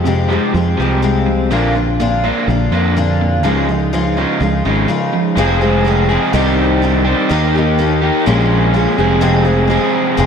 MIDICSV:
0, 0, Header, 1, 4, 480
1, 0, Start_track
1, 0, Key_signature, -4, "minor"
1, 0, Tempo, 481928
1, 1507, Time_signature, 4, 2, 24, 8
1, 10221, End_track
2, 0, Start_track
2, 0, Title_t, "Twelve-string acoustic guitar"
2, 0, Program_c, 0, 25
2, 52, Note_on_c, 0, 41, 76
2, 59, Note_on_c, 0, 48, 80
2, 64, Note_on_c, 0, 53, 76
2, 64, Note_on_c, 0, 56, 76
2, 67, Note_on_c, 0, 60, 86
2, 71, Note_on_c, 0, 67, 84
2, 287, Note_off_c, 0, 67, 0
2, 297, Note_off_c, 0, 41, 0
2, 299, Note_on_c, 0, 67, 57
2, 301, Note_off_c, 0, 48, 0
2, 301, Note_off_c, 0, 60, 0
2, 303, Note_off_c, 0, 53, 0
2, 303, Note_off_c, 0, 56, 0
2, 313, Note_on_c, 0, 60, 52
2, 325, Note_on_c, 0, 56, 50
2, 327, Note_on_c, 0, 53, 48
2, 529, Note_off_c, 0, 53, 0
2, 539, Note_off_c, 0, 56, 0
2, 541, Note_off_c, 0, 67, 0
2, 541, Note_on_c, 0, 53, 58
2, 548, Note_off_c, 0, 60, 0
2, 551, Note_on_c, 0, 56, 62
2, 562, Note_on_c, 0, 60, 60
2, 567, Note_on_c, 0, 67, 63
2, 783, Note_off_c, 0, 53, 0
2, 783, Note_off_c, 0, 67, 0
2, 788, Note_off_c, 0, 56, 0
2, 789, Note_off_c, 0, 60, 0
2, 795, Note_on_c, 0, 67, 54
2, 801, Note_on_c, 0, 60, 50
2, 814, Note_on_c, 0, 56, 51
2, 818, Note_on_c, 0, 53, 46
2, 1017, Note_off_c, 0, 53, 0
2, 1017, Note_off_c, 0, 56, 0
2, 1019, Note_on_c, 0, 41, 79
2, 1021, Note_on_c, 0, 48, 77
2, 1024, Note_off_c, 0, 67, 0
2, 1025, Note_off_c, 0, 60, 0
2, 1029, Note_on_c, 0, 53, 68
2, 1029, Note_on_c, 0, 56, 73
2, 1036, Note_on_c, 0, 67, 81
2, 1037, Note_on_c, 0, 60, 82
2, 1498, Note_off_c, 0, 48, 0
2, 1502, Note_on_c, 0, 46, 78
2, 1504, Note_off_c, 0, 41, 0
2, 1504, Note_off_c, 0, 53, 0
2, 1506, Note_off_c, 0, 56, 0
2, 1508, Note_on_c, 0, 53, 85
2, 1510, Note_on_c, 0, 58, 80
2, 1513, Note_off_c, 0, 67, 0
2, 1514, Note_off_c, 0, 60, 0
2, 1519, Note_on_c, 0, 62, 84
2, 1522, Note_on_c, 0, 65, 85
2, 1732, Note_off_c, 0, 65, 0
2, 1744, Note_on_c, 0, 65, 49
2, 1746, Note_off_c, 0, 46, 0
2, 1749, Note_off_c, 0, 53, 0
2, 1749, Note_off_c, 0, 62, 0
2, 1750, Note_off_c, 0, 58, 0
2, 1761, Note_on_c, 0, 62, 51
2, 1774, Note_on_c, 0, 58, 43
2, 1988, Note_off_c, 0, 65, 0
2, 1990, Note_on_c, 0, 46, 77
2, 1991, Note_off_c, 0, 62, 0
2, 1991, Note_on_c, 0, 53, 90
2, 1993, Note_off_c, 0, 58, 0
2, 2003, Note_on_c, 0, 62, 88
2, 2005, Note_on_c, 0, 58, 80
2, 2008, Note_on_c, 0, 65, 86
2, 2216, Note_off_c, 0, 65, 0
2, 2227, Note_on_c, 0, 65, 57
2, 2230, Note_off_c, 0, 62, 0
2, 2231, Note_off_c, 0, 46, 0
2, 2232, Note_off_c, 0, 53, 0
2, 2239, Note_off_c, 0, 58, 0
2, 2242, Note_on_c, 0, 62, 52
2, 2259, Note_on_c, 0, 58, 49
2, 2471, Note_off_c, 0, 65, 0
2, 2472, Note_off_c, 0, 58, 0
2, 2472, Note_on_c, 0, 53, 56
2, 2478, Note_off_c, 0, 62, 0
2, 2484, Note_on_c, 0, 58, 65
2, 2494, Note_on_c, 0, 62, 65
2, 2499, Note_on_c, 0, 65, 62
2, 2697, Note_off_c, 0, 65, 0
2, 2709, Note_on_c, 0, 65, 57
2, 2713, Note_off_c, 0, 53, 0
2, 2717, Note_off_c, 0, 62, 0
2, 2720, Note_off_c, 0, 58, 0
2, 2729, Note_on_c, 0, 62, 49
2, 2740, Note_on_c, 0, 58, 45
2, 2951, Note_off_c, 0, 58, 0
2, 2952, Note_off_c, 0, 62, 0
2, 2953, Note_off_c, 0, 65, 0
2, 2954, Note_on_c, 0, 46, 75
2, 2957, Note_on_c, 0, 53, 68
2, 2963, Note_on_c, 0, 58, 80
2, 2964, Note_on_c, 0, 62, 83
2, 2972, Note_on_c, 0, 65, 80
2, 3414, Note_off_c, 0, 46, 0
2, 3418, Note_on_c, 0, 49, 74
2, 3421, Note_off_c, 0, 53, 0
2, 3425, Note_on_c, 0, 53, 82
2, 3429, Note_off_c, 0, 58, 0
2, 3431, Note_off_c, 0, 62, 0
2, 3433, Note_off_c, 0, 65, 0
2, 3433, Note_on_c, 0, 56, 85
2, 3435, Note_on_c, 0, 63, 83
2, 3437, Note_on_c, 0, 65, 81
2, 3661, Note_off_c, 0, 65, 0
2, 3669, Note_off_c, 0, 49, 0
2, 3672, Note_off_c, 0, 53, 0
2, 3673, Note_on_c, 0, 65, 57
2, 3676, Note_off_c, 0, 56, 0
2, 3677, Note_off_c, 0, 63, 0
2, 3690, Note_on_c, 0, 63, 48
2, 3700, Note_on_c, 0, 56, 43
2, 3909, Note_off_c, 0, 56, 0
2, 3911, Note_on_c, 0, 49, 83
2, 3915, Note_off_c, 0, 63, 0
2, 3915, Note_on_c, 0, 53, 78
2, 3916, Note_off_c, 0, 65, 0
2, 3921, Note_on_c, 0, 56, 85
2, 3927, Note_on_c, 0, 63, 90
2, 3934, Note_on_c, 0, 65, 85
2, 4137, Note_off_c, 0, 65, 0
2, 4149, Note_off_c, 0, 63, 0
2, 4149, Note_on_c, 0, 65, 55
2, 4156, Note_off_c, 0, 49, 0
2, 4158, Note_off_c, 0, 53, 0
2, 4160, Note_on_c, 0, 63, 52
2, 4161, Note_off_c, 0, 56, 0
2, 4176, Note_on_c, 0, 56, 47
2, 4384, Note_on_c, 0, 53, 58
2, 4388, Note_off_c, 0, 56, 0
2, 4395, Note_off_c, 0, 65, 0
2, 4398, Note_off_c, 0, 63, 0
2, 4400, Note_on_c, 0, 56, 62
2, 4410, Note_on_c, 0, 63, 60
2, 4415, Note_on_c, 0, 65, 67
2, 4620, Note_off_c, 0, 65, 0
2, 4632, Note_off_c, 0, 53, 0
2, 4632, Note_on_c, 0, 65, 52
2, 4633, Note_off_c, 0, 63, 0
2, 4641, Note_off_c, 0, 56, 0
2, 4645, Note_on_c, 0, 63, 46
2, 4656, Note_on_c, 0, 56, 42
2, 4862, Note_off_c, 0, 56, 0
2, 4862, Note_on_c, 0, 49, 76
2, 4865, Note_off_c, 0, 63, 0
2, 4871, Note_on_c, 0, 53, 67
2, 4874, Note_off_c, 0, 65, 0
2, 4874, Note_on_c, 0, 56, 73
2, 4877, Note_on_c, 0, 63, 80
2, 4886, Note_on_c, 0, 65, 79
2, 5346, Note_off_c, 0, 56, 0
2, 5347, Note_on_c, 0, 41, 87
2, 5349, Note_off_c, 0, 53, 0
2, 5351, Note_off_c, 0, 49, 0
2, 5357, Note_on_c, 0, 48, 93
2, 5358, Note_on_c, 0, 56, 85
2, 5359, Note_off_c, 0, 63, 0
2, 5361, Note_on_c, 0, 53, 86
2, 5364, Note_off_c, 0, 65, 0
2, 5367, Note_on_c, 0, 60, 91
2, 5370, Note_on_c, 0, 68, 88
2, 5576, Note_off_c, 0, 68, 0
2, 5583, Note_off_c, 0, 60, 0
2, 5588, Note_on_c, 0, 68, 57
2, 5593, Note_off_c, 0, 56, 0
2, 5594, Note_off_c, 0, 41, 0
2, 5595, Note_on_c, 0, 60, 61
2, 5599, Note_off_c, 0, 48, 0
2, 5601, Note_off_c, 0, 53, 0
2, 5604, Note_on_c, 0, 56, 56
2, 5618, Note_on_c, 0, 53, 47
2, 5812, Note_off_c, 0, 53, 0
2, 5824, Note_on_c, 0, 53, 73
2, 5827, Note_off_c, 0, 56, 0
2, 5834, Note_off_c, 0, 68, 0
2, 5837, Note_off_c, 0, 60, 0
2, 5839, Note_on_c, 0, 56, 73
2, 5850, Note_on_c, 0, 60, 75
2, 5854, Note_on_c, 0, 68, 77
2, 6052, Note_off_c, 0, 68, 0
2, 6064, Note_on_c, 0, 68, 53
2, 6066, Note_off_c, 0, 60, 0
2, 6072, Note_off_c, 0, 53, 0
2, 6076, Note_off_c, 0, 56, 0
2, 6077, Note_on_c, 0, 60, 58
2, 6088, Note_on_c, 0, 56, 49
2, 6091, Note_on_c, 0, 53, 47
2, 6301, Note_off_c, 0, 60, 0
2, 6305, Note_off_c, 0, 53, 0
2, 6306, Note_on_c, 0, 48, 84
2, 6309, Note_off_c, 0, 56, 0
2, 6309, Note_on_c, 0, 51, 92
2, 6311, Note_off_c, 0, 68, 0
2, 6313, Note_on_c, 0, 60, 91
2, 6320, Note_on_c, 0, 63, 100
2, 6328, Note_on_c, 0, 67, 100
2, 6781, Note_off_c, 0, 51, 0
2, 6791, Note_off_c, 0, 48, 0
2, 6792, Note_off_c, 0, 60, 0
2, 6793, Note_on_c, 0, 51, 69
2, 6798, Note_off_c, 0, 63, 0
2, 6802, Note_off_c, 0, 67, 0
2, 6804, Note_on_c, 0, 60, 69
2, 6813, Note_on_c, 0, 63, 65
2, 6819, Note_on_c, 0, 67, 66
2, 7252, Note_off_c, 0, 51, 0
2, 7264, Note_on_c, 0, 51, 89
2, 7269, Note_off_c, 0, 63, 0
2, 7272, Note_off_c, 0, 60, 0
2, 7274, Note_off_c, 0, 67, 0
2, 7276, Note_on_c, 0, 58, 86
2, 7281, Note_on_c, 0, 63, 96
2, 7286, Note_on_c, 0, 67, 92
2, 7508, Note_off_c, 0, 51, 0
2, 7511, Note_off_c, 0, 67, 0
2, 7514, Note_off_c, 0, 58, 0
2, 7517, Note_off_c, 0, 63, 0
2, 7523, Note_on_c, 0, 67, 59
2, 7545, Note_on_c, 0, 63, 55
2, 7554, Note_on_c, 0, 58, 47
2, 7745, Note_off_c, 0, 58, 0
2, 7753, Note_off_c, 0, 63, 0
2, 7753, Note_on_c, 0, 51, 70
2, 7757, Note_off_c, 0, 67, 0
2, 7757, Note_on_c, 0, 58, 72
2, 7765, Note_on_c, 0, 63, 73
2, 7782, Note_on_c, 0, 67, 70
2, 8229, Note_on_c, 0, 46, 91
2, 8230, Note_off_c, 0, 51, 0
2, 8232, Note_off_c, 0, 58, 0
2, 8236, Note_off_c, 0, 63, 0
2, 8237, Note_on_c, 0, 53, 87
2, 8241, Note_on_c, 0, 56, 97
2, 8242, Note_on_c, 0, 61, 100
2, 8245, Note_off_c, 0, 67, 0
2, 8251, Note_on_c, 0, 68, 90
2, 8688, Note_off_c, 0, 53, 0
2, 8700, Note_on_c, 0, 53, 66
2, 8705, Note_off_c, 0, 56, 0
2, 8707, Note_off_c, 0, 46, 0
2, 8709, Note_off_c, 0, 61, 0
2, 8709, Note_on_c, 0, 56, 72
2, 8721, Note_on_c, 0, 61, 68
2, 8724, Note_off_c, 0, 68, 0
2, 8728, Note_on_c, 0, 68, 75
2, 8933, Note_off_c, 0, 68, 0
2, 8942, Note_off_c, 0, 53, 0
2, 8944, Note_on_c, 0, 68, 59
2, 8946, Note_off_c, 0, 56, 0
2, 8952, Note_off_c, 0, 61, 0
2, 8958, Note_on_c, 0, 60, 49
2, 8967, Note_on_c, 0, 56, 53
2, 8978, Note_on_c, 0, 53, 44
2, 9162, Note_off_c, 0, 53, 0
2, 9171, Note_off_c, 0, 56, 0
2, 9171, Note_off_c, 0, 60, 0
2, 9172, Note_on_c, 0, 41, 90
2, 9174, Note_on_c, 0, 53, 93
2, 9175, Note_on_c, 0, 48, 89
2, 9180, Note_off_c, 0, 68, 0
2, 9183, Note_on_c, 0, 56, 90
2, 9183, Note_on_c, 0, 60, 101
2, 9191, Note_on_c, 0, 68, 97
2, 9395, Note_off_c, 0, 68, 0
2, 9407, Note_on_c, 0, 68, 67
2, 9408, Note_off_c, 0, 60, 0
2, 9416, Note_off_c, 0, 41, 0
2, 9417, Note_off_c, 0, 56, 0
2, 9418, Note_off_c, 0, 48, 0
2, 9418, Note_off_c, 0, 53, 0
2, 9420, Note_on_c, 0, 60, 59
2, 9429, Note_on_c, 0, 56, 53
2, 9437, Note_on_c, 0, 53, 46
2, 9625, Note_off_c, 0, 53, 0
2, 9637, Note_on_c, 0, 53, 69
2, 9646, Note_off_c, 0, 56, 0
2, 9651, Note_off_c, 0, 60, 0
2, 9653, Note_off_c, 0, 68, 0
2, 9658, Note_on_c, 0, 56, 71
2, 9663, Note_on_c, 0, 60, 73
2, 9672, Note_on_c, 0, 68, 82
2, 10126, Note_off_c, 0, 53, 0
2, 10131, Note_on_c, 0, 41, 81
2, 10132, Note_on_c, 0, 48, 92
2, 10137, Note_off_c, 0, 56, 0
2, 10140, Note_on_c, 0, 53, 95
2, 10141, Note_off_c, 0, 60, 0
2, 10141, Note_on_c, 0, 56, 90
2, 10145, Note_on_c, 0, 60, 92
2, 10151, Note_off_c, 0, 68, 0
2, 10155, Note_on_c, 0, 68, 101
2, 10221, Note_off_c, 0, 41, 0
2, 10221, Note_off_c, 0, 48, 0
2, 10221, Note_off_c, 0, 53, 0
2, 10221, Note_off_c, 0, 56, 0
2, 10221, Note_off_c, 0, 60, 0
2, 10221, Note_off_c, 0, 68, 0
2, 10221, End_track
3, 0, Start_track
3, 0, Title_t, "Overdriven electric guitar"
3, 0, Program_c, 1, 29
3, 40, Note_on_c, 1, 41, 64
3, 44, Note_on_c, 1, 48, 73
3, 267, Note_off_c, 1, 41, 0
3, 269, Note_off_c, 1, 48, 0
3, 277, Note_on_c, 1, 41, 74
3, 283, Note_on_c, 1, 48, 85
3, 287, Note_on_c, 1, 53, 92
3, 516, Note_off_c, 1, 41, 0
3, 519, Note_off_c, 1, 48, 0
3, 521, Note_off_c, 1, 53, 0
3, 532, Note_on_c, 1, 41, 66
3, 534, Note_on_c, 1, 48, 75
3, 754, Note_off_c, 1, 41, 0
3, 756, Note_off_c, 1, 48, 0
3, 765, Note_on_c, 1, 41, 80
3, 767, Note_on_c, 1, 48, 90
3, 774, Note_on_c, 1, 53, 87
3, 1001, Note_off_c, 1, 41, 0
3, 1002, Note_off_c, 1, 48, 0
3, 1005, Note_off_c, 1, 53, 0
3, 1020, Note_on_c, 1, 41, 60
3, 1022, Note_on_c, 1, 48, 69
3, 1239, Note_off_c, 1, 41, 0
3, 1241, Note_off_c, 1, 48, 0
3, 1259, Note_on_c, 1, 41, 60
3, 1262, Note_on_c, 1, 48, 64
3, 1480, Note_off_c, 1, 41, 0
3, 1481, Note_off_c, 1, 48, 0
3, 1503, Note_on_c, 1, 46, 84
3, 1507, Note_on_c, 1, 50, 94
3, 1514, Note_on_c, 1, 58, 94
3, 1732, Note_off_c, 1, 46, 0
3, 1734, Note_off_c, 1, 50, 0
3, 1737, Note_off_c, 1, 58, 0
3, 1755, Note_on_c, 1, 46, 58
3, 1757, Note_on_c, 1, 50, 65
3, 1969, Note_off_c, 1, 46, 0
3, 1970, Note_off_c, 1, 50, 0
3, 1993, Note_on_c, 1, 46, 65
3, 1998, Note_on_c, 1, 50, 68
3, 2209, Note_off_c, 1, 46, 0
3, 2211, Note_off_c, 1, 50, 0
3, 2230, Note_on_c, 1, 46, 87
3, 2238, Note_on_c, 1, 50, 89
3, 2243, Note_on_c, 1, 58, 88
3, 2458, Note_off_c, 1, 46, 0
3, 2459, Note_off_c, 1, 50, 0
3, 2464, Note_off_c, 1, 58, 0
3, 2471, Note_on_c, 1, 50, 70
3, 2476, Note_on_c, 1, 46, 62
3, 2689, Note_off_c, 1, 50, 0
3, 2691, Note_off_c, 1, 46, 0
3, 2709, Note_on_c, 1, 46, 85
3, 2714, Note_on_c, 1, 50, 93
3, 2721, Note_on_c, 1, 58, 96
3, 2938, Note_off_c, 1, 46, 0
3, 2941, Note_off_c, 1, 50, 0
3, 2944, Note_off_c, 1, 58, 0
3, 2949, Note_on_c, 1, 46, 63
3, 2953, Note_on_c, 1, 50, 75
3, 3169, Note_off_c, 1, 46, 0
3, 3171, Note_off_c, 1, 50, 0
3, 3199, Note_on_c, 1, 50, 63
3, 3200, Note_on_c, 1, 46, 63
3, 3414, Note_off_c, 1, 50, 0
3, 3415, Note_off_c, 1, 46, 0
3, 3425, Note_on_c, 1, 49, 83
3, 3432, Note_on_c, 1, 53, 88
3, 3440, Note_on_c, 1, 56, 85
3, 3658, Note_off_c, 1, 49, 0
3, 3661, Note_off_c, 1, 53, 0
3, 3665, Note_off_c, 1, 56, 0
3, 3673, Note_on_c, 1, 49, 57
3, 3674, Note_on_c, 1, 53, 67
3, 3892, Note_off_c, 1, 49, 0
3, 3893, Note_off_c, 1, 53, 0
3, 3926, Note_on_c, 1, 53, 72
3, 3928, Note_on_c, 1, 49, 62
3, 4139, Note_off_c, 1, 53, 0
3, 4140, Note_off_c, 1, 49, 0
3, 4160, Note_on_c, 1, 49, 85
3, 4160, Note_on_c, 1, 53, 88
3, 4168, Note_on_c, 1, 56, 90
3, 4386, Note_off_c, 1, 49, 0
3, 4386, Note_off_c, 1, 53, 0
3, 4390, Note_off_c, 1, 56, 0
3, 4396, Note_on_c, 1, 49, 69
3, 4396, Note_on_c, 1, 53, 74
3, 4615, Note_off_c, 1, 49, 0
3, 4615, Note_off_c, 1, 53, 0
3, 4642, Note_on_c, 1, 49, 81
3, 4645, Note_on_c, 1, 53, 89
3, 4651, Note_on_c, 1, 56, 90
3, 4853, Note_off_c, 1, 49, 0
3, 4857, Note_off_c, 1, 53, 0
3, 4865, Note_on_c, 1, 49, 65
3, 4869, Note_on_c, 1, 53, 63
3, 4872, Note_off_c, 1, 56, 0
3, 5089, Note_off_c, 1, 49, 0
3, 5091, Note_off_c, 1, 53, 0
3, 5109, Note_on_c, 1, 49, 55
3, 5113, Note_on_c, 1, 53, 69
3, 5331, Note_off_c, 1, 49, 0
3, 5333, Note_off_c, 1, 53, 0
3, 5336, Note_on_c, 1, 41, 92
3, 5341, Note_on_c, 1, 48, 94
3, 5350, Note_on_c, 1, 53, 98
3, 5358, Note_on_c, 1, 56, 96
3, 5358, Note_on_c, 1, 60, 97
3, 5366, Note_on_c, 1, 68, 104
3, 6049, Note_off_c, 1, 68, 0
3, 6053, Note_off_c, 1, 41, 0
3, 6055, Note_off_c, 1, 48, 0
3, 6057, Note_off_c, 1, 60, 0
3, 6060, Note_off_c, 1, 53, 0
3, 6061, Note_on_c, 1, 68, 86
3, 6064, Note_off_c, 1, 56, 0
3, 6069, Note_on_c, 1, 60, 80
3, 6075, Note_on_c, 1, 56, 83
3, 6082, Note_on_c, 1, 48, 75
3, 6082, Note_on_c, 1, 53, 76
3, 6089, Note_on_c, 1, 41, 72
3, 6292, Note_off_c, 1, 48, 0
3, 6296, Note_off_c, 1, 68, 0
3, 6300, Note_off_c, 1, 60, 0
3, 6302, Note_off_c, 1, 56, 0
3, 6303, Note_off_c, 1, 53, 0
3, 6304, Note_on_c, 1, 48, 83
3, 6307, Note_on_c, 1, 51, 93
3, 6310, Note_off_c, 1, 41, 0
3, 6314, Note_on_c, 1, 55, 92
3, 6323, Note_on_c, 1, 60, 93
3, 6327, Note_on_c, 1, 67, 92
3, 7004, Note_off_c, 1, 67, 0
3, 7007, Note_off_c, 1, 60, 0
3, 7014, Note_off_c, 1, 48, 0
3, 7016, Note_off_c, 1, 51, 0
3, 7016, Note_on_c, 1, 67, 78
3, 7019, Note_off_c, 1, 55, 0
3, 7019, Note_on_c, 1, 60, 83
3, 7030, Note_on_c, 1, 55, 84
3, 7035, Note_on_c, 1, 51, 81
3, 7040, Note_on_c, 1, 48, 75
3, 7250, Note_off_c, 1, 67, 0
3, 7252, Note_off_c, 1, 60, 0
3, 7255, Note_off_c, 1, 51, 0
3, 7258, Note_off_c, 1, 55, 0
3, 7263, Note_off_c, 1, 48, 0
3, 7267, Note_on_c, 1, 51, 97
3, 7278, Note_on_c, 1, 58, 88
3, 7287, Note_on_c, 1, 63, 105
3, 7296, Note_on_c, 1, 67, 101
3, 7973, Note_off_c, 1, 51, 0
3, 7973, Note_off_c, 1, 67, 0
3, 7979, Note_off_c, 1, 58, 0
3, 7983, Note_off_c, 1, 63, 0
3, 7985, Note_on_c, 1, 67, 90
3, 8000, Note_on_c, 1, 63, 84
3, 8007, Note_on_c, 1, 58, 76
3, 8018, Note_on_c, 1, 51, 69
3, 8212, Note_off_c, 1, 67, 0
3, 8220, Note_off_c, 1, 63, 0
3, 8223, Note_off_c, 1, 58, 0
3, 8223, Note_on_c, 1, 46, 93
3, 8228, Note_off_c, 1, 51, 0
3, 8232, Note_on_c, 1, 53, 84
3, 8243, Note_on_c, 1, 58, 91
3, 8243, Note_on_c, 1, 61, 99
3, 8250, Note_on_c, 1, 65, 104
3, 8928, Note_off_c, 1, 46, 0
3, 8932, Note_off_c, 1, 53, 0
3, 8934, Note_on_c, 1, 41, 87
3, 8938, Note_off_c, 1, 58, 0
3, 8938, Note_off_c, 1, 61, 0
3, 8942, Note_off_c, 1, 65, 0
3, 8944, Note_on_c, 1, 48, 93
3, 8951, Note_on_c, 1, 53, 96
3, 8956, Note_on_c, 1, 56, 96
3, 8962, Note_on_c, 1, 68, 92
3, 8964, Note_on_c, 1, 60, 91
3, 9641, Note_off_c, 1, 41, 0
3, 9646, Note_off_c, 1, 48, 0
3, 9647, Note_off_c, 1, 53, 0
3, 9652, Note_on_c, 1, 41, 75
3, 9659, Note_on_c, 1, 48, 74
3, 9659, Note_on_c, 1, 53, 76
3, 9666, Note_off_c, 1, 56, 0
3, 9670, Note_on_c, 1, 56, 84
3, 9672, Note_off_c, 1, 60, 0
3, 9676, Note_off_c, 1, 68, 0
3, 9676, Note_on_c, 1, 60, 89
3, 9680, Note_on_c, 1, 68, 84
3, 10221, Note_off_c, 1, 41, 0
3, 10221, Note_off_c, 1, 48, 0
3, 10221, Note_off_c, 1, 53, 0
3, 10221, Note_off_c, 1, 56, 0
3, 10221, Note_off_c, 1, 60, 0
3, 10221, Note_off_c, 1, 68, 0
3, 10221, End_track
4, 0, Start_track
4, 0, Title_t, "Fingered electric bass"
4, 0, Program_c, 2, 33
4, 0, Note_on_c, 2, 41, 89
4, 370, Note_off_c, 2, 41, 0
4, 539, Note_on_c, 2, 41, 93
4, 739, Note_off_c, 2, 41, 0
4, 784, Note_on_c, 2, 36, 86
4, 1501, Note_off_c, 2, 36, 0
4, 1501, Note_on_c, 2, 34, 89
4, 2299, Note_off_c, 2, 34, 0
4, 2466, Note_on_c, 2, 34, 97
4, 2668, Note_off_c, 2, 34, 0
4, 2699, Note_on_c, 2, 41, 83
4, 3423, Note_off_c, 2, 41, 0
4, 3423, Note_on_c, 2, 37, 87
4, 4222, Note_off_c, 2, 37, 0
4, 4387, Note_on_c, 2, 37, 96
4, 4591, Note_off_c, 2, 37, 0
4, 4628, Note_on_c, 2, 32, 84
4, 4831, Note_off_c, 2, 32, 0
4, 5347, Note_on_c, 2, 29, 92
4, 6142, Note_off_c, 2, 29, 0
4, 6311, Note_on_c, 2, 36, 108
4, 7102, Note_off_c, 2, 36, 0
4, 7275, Note_on_c, 2, 39, 98
4, 8061, Note_off_c, 2, 39, 0
4, 8239, Note_on_c, 2, 34, 106
4, 8825, Note_off_c, 2, 34, 0
4, 8948, Note_on_c, 2, 29, 92
4, 9733, Note_off_c, 2, 29, 0
4, 10142, Note_on_c, 2, 29, 114
4, 10221, Note_off_c, 2, 29, 0
4, 10221, End_track
0, 0, End_of_file